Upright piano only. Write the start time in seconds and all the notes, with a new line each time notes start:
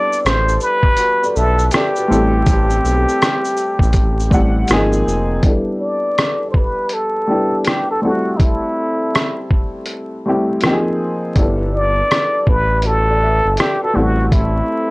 Already playing: G3 B3 D4 E4 A4
0.98 F#4 B4
1.23 A4 D5
1.38 B4 E5
1.74 A4 D5
1.97 F#4 B4
2.08 G3 A3 C4 E4 A4
4.30 G3 A3 C4 E4 F#5
4.70 F3 A#3 C4 D#4 G#4
5.43 G3 B3 D4 E4 A4
7.27 G3 B3 D4 E4 G4
8.02 G3 A3 C4 E4 A4
10.26 G3 A3 C4 E4 G4
10.63 F3 A#3 C4 D#4 G4
10.72 G#4
11.36 G3 B3 D4 E4 A4
12.83 F#4 B4
13.09 A4 D5
13.23 B4 E5
13.59 A4 D5
13.83 F#4 B4
13.93 G3 A3 C4 E4 A4